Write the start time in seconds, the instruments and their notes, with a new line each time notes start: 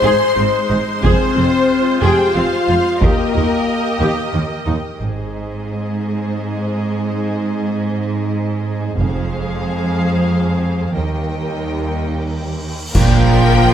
Already playing: string section G#3 D#4 C5 C6, french horn section C5, viola section C5, violin section C6
0.03 double bass section G#1, cello section G#2, viola section G#4
0.36 double bass section G#1, cello section G#2, viola section C4
0.69 double bass section G#1, cello section G#2, viola section D#4
1.01 double bass section F1, cello section F2, french horn section C4, string section F4, viola section G#4 C5, violin section C5, taiko
1.36 double bass section F1, cello section F2, viola section C4
2.02 double bass section F1, cello section F2, french horn section G4, viola section G#4, violin section G5
2.34 double bass section F1, cello section F2, viola section C4, french horn section F4, violin section F5
2.68 double bass section F1, cello section F2, viola section F4
3.01 double bass section D#2, cello section D#2, french horn section A#3, viola section G4 D#5, string section G4 A#4 D#5 G5, violin section A#4, taiko
3.34 double bass section D#2, cello section D#2, viola section A#3
4.00 double bass section D#2, cello section D#2, viola section G4
4.33 double bass section D#2, cello section D#2, viola section A#3
4.66 double bass section D#2, cello section D#2, viola section D#4
4.98 double bass section G#1, cello section G#2, french horn section G#3 C4, viola section G#4, violin section C5 D#5, taiko
8.97 double bass section F1, cello section F2, french horn section G#3 C4, viola section G#4, violin section C5 F5, taiko
10.95 double bass section D#2, cello section D#2, french horn section G3 A#3, viola section A#4, violin section D#5 G5, cymbal swell
12.93 double bass section A#1, cello section A#2, viola section F3, french horn section A#3, string section D4 A#4 D5 F5, violin section A#4 G5, concert bass drum, taiko, crash, sub drop